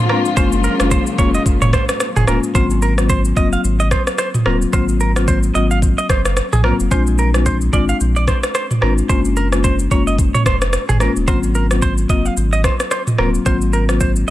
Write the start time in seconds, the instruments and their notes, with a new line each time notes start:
Already playing: string section D3 F3 G#3 A#3 F4
0.09 marimba G#3 C4 D4 F4, clean electric guitar A#4, cross-stick
0.25 shaker
0.36 sub bass F#1, string section C#3 F#3 A#3, marimba G#3 A#3 C#4 F4, clean electric guitar C5, kick, shaker
0.52 shaker
0.64 clean electric guitar A#4, shaker
0.79 sub bass F#1, marimba G#3 A#3 C#4 F4, cross-stick, shaker
0.91 clean electric guitar C5, kick, shaker
1.07 shaker
1.18 sub bass F1, marimba G#3 A#3 C#4 F4, clean electric guitar C#5, kick, shaker
1.34 clean electric guitar D#5, shaker
1.46 sub bass F#1, kick, shaker
1.62 clean electric guitar C#5, mid tom, shaker
1.73 clean electric guitar C5, kick, cross-stick, shaker
1.89 cross-stick, shaker
2.00 cross-stick, shaker
2.16 sub bass F#1, clean electric guitar G#4, mid tom, shaker
2.27 sub bass D#1, marimba G#3 A#3 C#4 F4, clean electric guitar A#4, cross-stick, shaker
2.44 shaker
2.55 sub bass G#1, marimba F#3 A#3 C4 F4, clean electric guitar C5, kick, shaker
2.70 shaker
2.82 clean electric guitar A#4, shaker
2.98 marimba F#3 A#3 C4 F4, cross-stick, shaker
3.09 clean electric guitar C5, kick, shaker
3.25 shaker
3.36 sub bass F#1, marimba F#3 A#3 C4 F4, clean electric guitar D#5, kick, shaker
3.53 clean electric guitar F5, shaker
3.64 sub bass G#1, shaker
3.80 clean electric guitar D#5, shaker
3.91 clean electric guitar C5, kick, cross-stick, shaker
4.07 cross-stick, shaker
4.18 clean electric guitar C5, cross-stick, shaker
4.34 mid tom, shaker
4.46 sub bass D#1, marimba F#3 A#3 C4 F4, clean electric guitar A#4, cross-stick
4.62 shaker
4.73 sub bass G#1, marimba F#3 A#3 C4 F4, clean electric guitar C5, kick, shaker
4.89 shaker
5.00 clean electric guitar A#4, shaker
5.16 marimba F#3 A#3 C4 F4, cross-stick, shaker
5.28 clean electric guitar C5, kick, shaker
5.43 shaker
5.55 sub bass G#1, marimba F#3 A#3 C4 F4, clean electric guitar D#5, shaker
5.71 clean electric guitar F5, shaker
5.82 kick, shaker
5.98 clean electric guitar D#5, shaker
6.09 sub bass F#1, clean electric guitar C5, kick, cross-stick, shaker
6.25 cross-stick, shaker
6.37 cross-stick, shaker
6.53 sub bass A#1, clean electric guitar G#4, mid tom, shaker
6.64 marimba F#3 A#3 C4 F4, clean electric guitar A#4, cross-stick
6.80 sub bass F1, shaker
6.91 sub bass A#1, marimba G#3 C4 D4 F4, clean electric guitar C5, kick, shaker
7.07 shaker
7.18 clean electric guitar A#4, shaker
7.34 marimba G#3 C4 D4 F4, cross-stick, shaker
7.46 clean electric guitar C5, kick, shaker
7.61 shaker
7.73 sub bass G#1, marimba G#3 C4 D4 F4, clean electric guitar D5, kick, shaker
7.89 clean electric guitar F5, shaker
8.01 sub bass A#1, shaker
8.16 clean electric guitar D5, shaker
8.28 clean electric guitar C5, kick, cross-stick, shaker
8.43 cross-stick, shaker
8.55 clean electric guitar C5, cross-stick, shaker
8.71 mid tom, shaker
8.82 sub bass G#1, marimba G#3 C4 D4 F4, clean electric guitar A#4, cross-stick
8.98 shaker
9.09 sub bass F#1, marimba G#3 A#3 C#4 F4, clean electric guitar C5, kick, shaker
9.25 shaker
9.37 clean electric guitar A#4, shaker
9.52 marimba G#3 A#3 C#4 F4, cross-stick, shaker
9.64 clean electric guitar C5, kick, shaker
9.79 shaker
9.91 sub bass F#1, marimba G#3 A#3 C#4 F4, clean electric guitar C#5, kick, shaker
10.07 clean electric guitar D#5, shaker
10.19 kick, shaker
10.34 clean electric guitar C#5, mid tom, shaker
10.46 sub bass F1, clean electric guitar C5, kick, cross-stick, shaker
10.62 cross-stick, shaker
10.73 cross-stick, shaker
10.89 sub bass G#1, clean electric guitar G#4, mid tom, shaker
11.00 marimba G#3 A#3 C#4 F4, clean electric guitar A#4, cross-stick, shaker
11.16 sub bass D#1, shaker
11.28 sub bass G#1, marimba F#3 A#3 C4 F4, clean electric guitar C5, kick, shaker
11.43 shaker
11.55 clean electric guitar A#4, shaker
11.71 marimba F#3 A#3 C4 F4, cross-stick, shaker
11.82 clean electric guitar C5, kick, shaker
11.98 shaker
12.09 sub bass F#1, marimba F#3 A#3 C4 F4, clean electric guitar D#5, kick, shaker
12.25 clean electric guitar F5, shaker
12.37 sub bass G#1, shaker
12.53 clean electric guitar D#5, shaker
12.64 clean electric guitar C5, kick, cross-stick, shaker
12.80 cross-stick, shaker
12.91 clean electric guitar C5, cross-stick, shaker
13.07 mid tom, shaker
13.18 sub bass D#1, marimba F#3 A#3 C4 F4, clean electric guitar A#4, cross-stick
13.34 shaker
13.46 sub bass G#1, marimba F#3 A#3 C4 F4, clean electric guitar C5, kick, shaker
13.61 shaker
13.73 clean electric guitar A#4, shaker
13.89 marimba F#3 A#3 C4 F4, cross-stick, shaker
14.01 clean electric guitar C5, kick, shaker
14.16 shaker